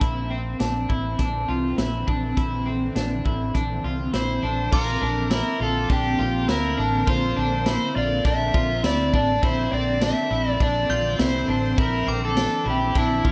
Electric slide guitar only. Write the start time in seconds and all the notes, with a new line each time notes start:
4.16 C5
4.74 A#4
5.34 A#4
5.63 A4
5.92 G4
6.51 A#4
7.10 C5
7.69 C5
7.97 D5
8.27 E5
8.86 D5
9.15 D5
9.45 C5
9.74 D5
10.04 E5
10.50 D5
10.63 D5
11.22 C5
11.81 A#4
12.25 A4
12.70 G4
12.98 E4